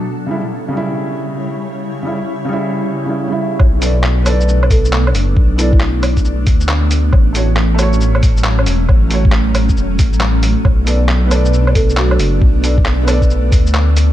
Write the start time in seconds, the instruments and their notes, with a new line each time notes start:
0.06 ambient pad C#3 G3 E4 C#5
0.26 felt piano C#3 G3
0.31 felt piano E4
0.68 felt piano C#3
0.73 felt piano G3
0.77 felt piano E4
2.03 felt piano C#3 G3 E4
2.45 felt piano C#3 G3
2.53 felt piano E4
3.06 felt piano C#3 G3 E4
3.28 felt piano C#3 G3
3.32 felt piano E4
3.58 detuned saw bass B1, ambient pad A3 B3 D4, kick, low woodblock
3.79 felt piano B3 A4 D5, open hi-hat, shaker
4.04 clap
4.22 felt piano B3 A4, open hi-hat, low woodblock, shaker
4.30 felt piano D5
4.41 shaker
4.49 shaker
4.63 low woodblock
4.70 marimba A4, kick, open hi-hat, shaker
4.85 shaker
4.93 clap
5.07 low woodblock
5.14 detuned saw bass F#1, open hi-hat, shaker
5.37 detuned saw bass B1, kick
5.56 felt piano B3 A4, marimba E4, open hi-hat, shaker
5.60 felt piano D5
5.73 kick
5.80 clap
6.03 open hi-hat, low woodblock, shaker
6.17 kick, shaker
6.25 shaker
6.47 detuned saw bass D2, kick, open hi-hat, shaker
6.61 shaker
6.69 clap
6.91 open hi-hat, shaker
7.11 detuned saw bass A1, ambient pad F#3 C#4, kick, low woodblock
7.33 felt piano A3 F#4, open hi-hat, shaker
7.37 felt piano C#5
7.57 clap
7.74 felt piano A3
7.78 felt piano F#4 C#5, open hi-hat, low woodblock, shaker
7.93 shaker
8.01 shaker
8.15 low woodblock
8.23 kick, open hi-hat, shaker
8.37 shaker
8.44 clap
8.59 low woodblock
8.66 detuned saw bass E1, open hi-hat, shaker
8.89 detuned saw bass A1, kick, low woodblock
9.10 felt piano A3 F#4, open hi-hat, shaker
9.14 felt piano C#5
9.25 kick
9.32 clap
9.55 open hi-hat, low woodblock, shaker
9.69 kick, shaker
9.77 detuned saw bass E1, shaker
9.99 detuned saw bass A1, kick, open hi-hat, shaker
10.13 shaker
10.21 clap
10.43 open hi-hat, shaker
10.64 detuned saw bass B1, ambient pad B3 D4, kick, low woodblock
10.85 felt piano B3 A4, open hi-hat, shaker
10.89 felt piano D5
11.09 clap
11.27 felt piano B3
11.31 felt piano A4, open hi-hat, low woodblock, shaker
11.35 felt piano D5
11.45 shaker
11.53 shaker
11.67 low woodblock
11.75 marimba A4, kick, open hi-hat, shaker
11.89 shaker
11.97 marimba F#4, clap
12.11 low woodblock
12.20 detuned saw bass F#1, open hi-hat, shaker
12.42 detuned saw bass B1, kick
12.61 felt piano B3 A4 D5, open hi-hat, shaker
12.78 kick
12.86 clap
13.03 felt piano B3 A4
13.08 felt piano D5, open hi-hat, low woodblock, shaker
13.22 kick, shaker
13.30 shaker
13.52 detuned saw bass D2, kick, open hi-hat, shaker
13.66 shaker
13.75 clap
13.97 open hi-hat, shaker